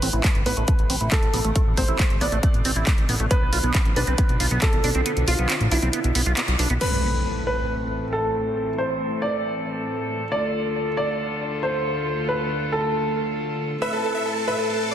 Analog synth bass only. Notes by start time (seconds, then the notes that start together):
0.02 A1
0.13 A1
0.35 G1
0.46 A1
0.57 A1
0.79 A1
0.90 A1
1.01 A1
1.23 A1
1.34 A1
1.45 A1
1.67 A1
1.77 A1
1.88 A1
2.10 G1
2.21 A1
2.32 A1
2.54 A1
2.65 A1
2.76 A1
2.98 A1
3.09 A1
3.20 A1
3.42 B1
3.53 B1
3.63 B1
3.85 A1
3.96 B1
4.07 B1
4.29 B1
4.40 B1
4.51 B1
4.73 B1
4.84 B1
4.95 B1
5.17 B1
5.28 B1
5.39 B1
5.61 A1
5.71 B1
5.82 B1
6.04 B1
6.15 B1
6.26 B1
6.48 B1
6.59 B1
6.70 B1